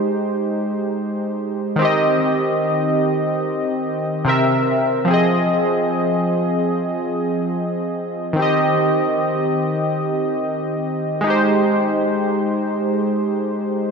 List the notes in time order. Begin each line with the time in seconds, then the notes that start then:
Already playing: G#3 D#4 G4 C5
1.76 D#3 C4
1.82 G4 D#5
4.25 C3 C4 A#4
4.29 E5
5.05 F3 C4
5.11 G#4 D#5
8.33 D#3 C4
8.39 G4 D#5
11.21 G#3 D#4
11.27 G4 C5